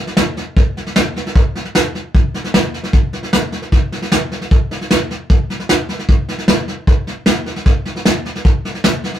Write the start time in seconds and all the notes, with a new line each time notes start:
0.07 snare
0.17 snare, hi-hat pedal
0.37 snare
0.56 kick, snare
0.77 snare
0.86 snare
0.96 snare, hi-hat pedal
1.16 snare
1.26 snare
1.36 kick, snare
1.55 snare
1.65 snare
1.75 snare, hi-hat pedal
1.95 snare
2.15 kick, snare
2.34 snare
2.44 snare
2.54 snare, hi-hat pedal
2.74 snare
2.83 snare
2.93 kick, snare
3.13 snare
3.23 snare
3.33 snare, hi-hat pedal
3.52 snare
3.62 snare
3.72 kick, snare
3.92 snare
4.02 snare
4.12 snare, hi-hat pedal
4.32 snare
4.41 snare
4.51 kick, snare
4.71 snare
4.81 snare
4.91 snare, hi-hat pedal
5.11 snare
5.30 kick, snare
5.50 snare
5.60 snare
5.69 snare, hi-hat pedal
5.89 snare
5.99 snare
6.09 kick, snare
6.29 snare
6.38 snare
6.48 snare, hi-hat pedal
6.68 snare
6.87 kick, snare
7.07 snare
7.26 snare, hi-hat pedal
7.46 snare
7.56 snare
7.65 kick, snare
7.85 snare
7.96 snare
8.05 snare, hi-hat pedal
8.25 snare
8.35 snare
8.45 kick, snare
8.65 snare
8.75 snare
8.84 snare, hi-hat pedal
9.04 snare
9.14 snare